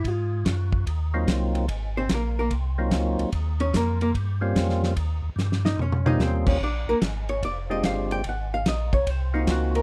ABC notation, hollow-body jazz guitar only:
X:1
M:4/4
L:1/8
Q:"Swing" 1/4=146
K:Ebmix
V:1 name="Hollow-body jazz guitar"
F4 z4 | z [Cc] [B,B] [B,B] z4 | z [Dd] [B,B] [B,B] z4 | z3 [Ee] [Dd] [Ee] [Cc] [Dd] |
[=D=d] [B,B] z _d =d e f g | _g f e d c E _G B |]